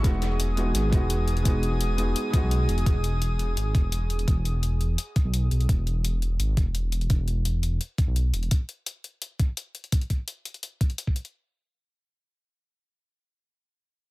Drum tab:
HH |x-x-x-x-x-x-x-xx|x-x-x-x-x-x-x-xx|x-x-x-x-x-x-x-xx|x-x-x-x-x-x-x-xx|
BD |o---------o-----|o---------o-----|o---------o-----|o---------o-----|

HH |x-x-x-x-x-x-x-xx|x-x-x-x-x-x-x-xx|x-x-x-x-x-x-x-xx|xxx-x-xxx-xxx-xx|
BD |o---------o-----|o---------o-----|o---------o-----|o-o-------o--o--|

HH |----------------|----------------|
BD |----------------|----------------|